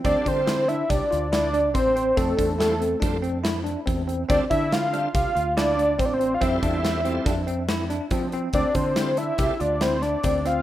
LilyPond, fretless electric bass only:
\new Staff \with { instrumentName = "Fretless electric bass" } { \clef bass \time 5/4 \key d \minor \tempo 4 = 141 d,16 r16 d4. c,16 r16 d,4. a,,4 | f,8 e,4. f,2 e,4 | d,16 r16 d4. c,16 r16 d,4. a,,4 | f,8 e,4. f,2 f4 |
d,16 r16 d4. c,16 r16 d,4. d,4 | }